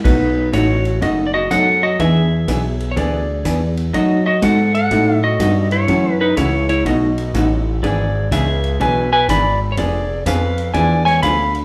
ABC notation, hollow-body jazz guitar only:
X:1
M:4/4
L:1/8
Q:"Swing" 1/4=124
K:E
V:1 name="Hollow-body jazz guitar"
[B,,F,A,DF] z [B,,F,A,DF] z [B,,F,A,DF] z [B,,F,A,DF] z | [E,B,=DG] z [E,B,DG] z [E,B,DG] z [E,B,DG] z | [B,,F,A,DF] z [B,,F,A,DF] z [B,,F,A,DF] z [B,,F,A,DF] z | [C,E,A,CF] z [C,E,A,CF] z [B,,F,A,DF] z [B,,F,A,DF] z |
[E,B,=DG] z [E,B,DG] z [E,B,DG] z [E,B,DG] z | [=F,_C=D_A] z [F,CDA] z [F,CDA] z [F,CDA] z |]